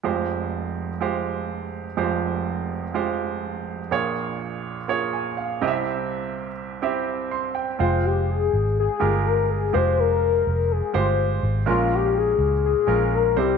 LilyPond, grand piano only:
<<
  \new Staff \with { instrumentName = "Grand piano" } { \time 4/4 \key f \minor \tempo 4 = 124 << { r1 | r1 | r2 r8 aes''8 f''4 | r2. c'''8 g''8~ |
g''8 r2. r8 | r1 | r1 | } \\ { <aes f' g' c''>4.~ <aes f' g' c''>16 r16 <aes f' g' c''>4.~ <aes f' g' c''>16 r16 | <aes f' g' c''>4.~ <aes f' g' c''>16 r16 <aes f' g' c''>4.~ <aes f' g' c''>16 r16 | <bes f' aes' des''>4.~ <bes f' aes' des''>16 r16 <bes f' aes' des''>4. <c' e' g' ees'' e''>8~ | <c' e' g' ees'' e''>4~ <c' e' g' ees'' e''>16 r8. <c' e' g' e''>4.~ <c' e' g' e''>16 r16 |
<aes f' c'' g''>4.~ <aes f' c'' g''>16 r8. <aes f' g' bes'>4. | <aes f' g' c''>4.~ <aes f' g' c''>16 r8. <aes f' g' c''>4. | <aes des' f' bes'>4.~ <aes des' f' bes'>16 r8. <aes des' f' bes'>4 <g c' e' c''>8 | } >> }
  \new Staff \with { instrumentName = "Grand piano" } { \clef bass \time 4/4 \key f \minor <f,, f,>1 | <f,, f,>1 | <bes,, bes,>2.~ <bes,, bes,>8 <c, c>8~ | <c, c>2.~ <c, c>8 r8 |
r1 | r1 | bes,4. r2 c8 | }
>>